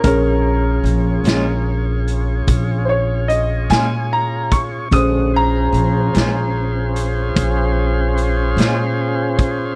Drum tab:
HH |x-xx-xx-xx-x|x-xx-xx-xx-x|
SD |---o-----o--|---o-----o--|
BD |o-----o----o|o-----o----o|